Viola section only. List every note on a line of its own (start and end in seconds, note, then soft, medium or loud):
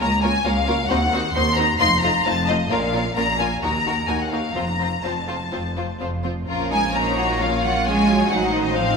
0.00 0.08 A#3 medium
0.00 0.09 F4 medium
0.23 0.32 A#3 medium
0.23 0.31 F4 medium
0.44 0.52 A#3 medium
0.44 0.53 F4 medium
0.67 0.75 A#3 medium
0.67 0.76 F4 medium
0.90 0.98 C4 medium
0.90 0.98 D#4 medium
1.13 1.21 C4 medium
1.13 1.21 D#4 medium
1.36 1.44 C4 medium
1.36 1.44 D#4 medium
1.58 1.66 C4 medium
1.58 1.66 D#4 medium
1.80 1.88 A3 medium
1.80 1.88 D#4 medium
2.03 2.11 A3 medium
2.03 2.11 D#4 medium
2.26 2.34 A3 medium
2.26 2.34 D#4 medium
2.49 2.57 A3 medium
2.49 2.57 D#4 medium
2.70 2.79 A#3 medium
2.70 2.78 C#4 medium
2.94 3.02 A#3 medium
2.94 3.02 C#4 medium
3.17 3.25 A#3 medium
3.17 3.25 C#4 medium
3.39 3.47 A#3 medium
3.39 3.47 C#4 medium
3.62 3.70 A#3 medium
3.62 3.70 D#4 medium
3.86 3.94 A#3 medium
3.86 3.94 D#4 medium
4.08 4.16 A#3 medium
4.08 4.16 D#4 medium
4.32 4.40 A#3 medium
4.32 4.40 D#4 soft
4.55 4.63 F3 medium
4.55 4.63 C4 medium
4.80 4.88 F3 soft
4.80 4.88 C4 soft
5.04 5.13 F3 soft
5.04 5.12 C4 soft
5.28 5.36 F3 soft
5.28 5.36 C4 soft
5.52 5.61 F3 soft
5.52 5.60 C4 soft
5.77 5.85 F3 soft
5.77 5.85 C4 soft
6.00 6.08 F3 soft
6.00 6.08 C4 soft
6.24 6.32 F3 soft
6.24 6.32 C4 soft
6.47 7.35 F3 medium
6.47 6.90 C#4 medium
6.95 7.40 D#4 medium
7.40 7.85 A#3 medium
7.40 7.84 C#4 medium
7.85 8.08 G#3 medium
7.85 8.29 C#4 medium
8.09 8.75 F#3 medium
8.31 8.97 D#4 medium
8.76 8.97 F3 medium